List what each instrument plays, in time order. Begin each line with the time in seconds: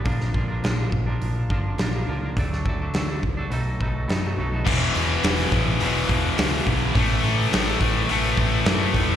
0.04 picked electric bass A#1, clean electric guitar A#2 D3 F3 A#3 D4, kick, open hi-hat
0.21 snare
0.33 picked electric bass A#1, clean electric guitar D3 F3 A#3 D4, kick
0.48 clean electric guitar F3 A#3 D4
0.62 picked electric bass A#1, clean electric guitar A#2 D3 F3 A#3 D4, snare, open hi-hat
0.77 clean electric guitar F3 A#3 D4
0.92 picked electric bass A#1, muted clean electric guitar stroke, kick
1.06 clean electric guitar F3 A#3 D4
1.22 picked electric bass A#1, open hi-hat
1.50 picked electric bass G1, clean electric guitar D3 F3 A#3 D4, kick
1.78 picked electric bass A#1, clean electric guitar A#2 D3 F3 A#3 D4, snare, open hi-hat
1.93 clean electric guitar F3 A#3 D4
2.07 picked electric bass C#2, clean electric guitar D3 F3 A#3 D4
2.21 clean electric guitar F3 A#3 D4
2.36 picked electric bass D2, clean electric guitar D3 F#3 A3 D4, kick, open hi-hat
2.53 snare
2.66 picked electric bass D2, clean electric guitar D3 F#3 A3 D4, kick
2.80 clean electric guitar F#3 A3 D4
2.94 picked electric bass D2, clean electric guitar D3 F#3 A3 D4, snare, open hi-hat
3.08 clean electric guitar F#3 A3 D4
3.23 picked electric bass C#2, muted clean electric guitar stroke, kick
3.37 clean electric guitar F#3 A3 D4
3.50 picked electric bass B1, clean electric guitar B2 F#3 A3 D#4, open hi-hat
3.80 picked electric bass B1, clean electric guitar B2 F#3 A3 D#4, kick
4.08 picked electric bass F#2, clean electric guitar B2 F#3 A3 D#4, snare, open hi-hat
4.23 clean electric guitar F#3 A3 D#4
4.37 picked electric bass B1, clean electric guitar B2 F#3 A3 D#4
4.52 clean electric guitar F#3 A3 D#4
4.66 picked electric bass E1, distorted electric guitar E2 B2 E3, kick, crash
4.94 picked electric bass E1, distorted electric guitar E2 B2 E3, open hi-hat
5.23 picked electric bass E1, distorted electric guitar E2 B2 E3, snare, open hi-hat
5.39 snare
5.51 picked electric bass A1, distorted electric guitar E2 B2 E3, kick, snare, open hi-hat
5.80 picked electric bass E1, distorted electric guitar E2 B2 E3, open hi-hat
6.09 picked electric bass E1, distorted electric guitar E2 B2 E3, kick, open hi-hat
6.37 picked electric bass C#2, distorted electric guitar E2 B2 E3, snare, open hi-hat
6.66 picked electric bass B1, distorted electric guitar E2 B2 E3, kick, open hi-hat
6.95 picked electric bass A1, distorted electric guitar A2 E3 A3, kick, open hi-hat
7.23 distorted electric guitar A2 E3 A3, picked electric bass A2, open hi-hat
7.52 picked electric bass A1, distorted electric guitar A2 E3 A3, snare, open hi-hat
7.80 picked electric bass A1, distorted electric guitar A2 E3 A3, kick, open hi-hat
8.09 picked electric bass A1, distorted electric guitar A2 E3 A3, open hi-hat
8.37 picked electric bass A1, distorted electric guitar A2 E3 A3, kick, open hi-hat
8.65 picked electric bass F#2, distorted electric guitar A2 E3 A3, snare, open hi-hat
8.94 picked electric bass E1, distorted electric guitar A2 E3 A3, kick, open hi-hat